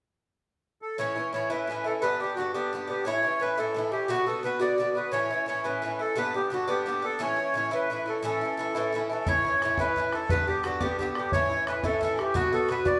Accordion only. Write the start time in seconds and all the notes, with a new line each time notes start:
0.82 A4
0.99 C#5
1.34 C#5
1.50 B4
1.85 A4
2.02 B4
2.20 G4
2.36 F#4
2.54 G4
2.89 G4
3.06 C#5
3.41 B4
3.59 A4
3.92 G4
4.09 F#4
4.27 A4
4.44 B4
4.61 D5
4.96 B4
5.12 C#5
5.47 C#5
5.64 B4
6.00 A4
6.18 B4
6.35 G4
6.53 F#4
6.70 G4
7.05 A4
7.22 C#5
7.56 C#5
7.74 B4
8.08 A4
8.26 A4
9.11 A4
9.29 C#5
9.63 C#5
9.80 B4
10.13 A4
10.30 B4
10.47 G4
10.65 F#4
10.81 G4
10.98 G4
11.16 G4
11.32 C#5
11.68 B4
11.85 A4
12.20 G4
12.35 F#4
12.54 A4
12.70 B4
12.86 D5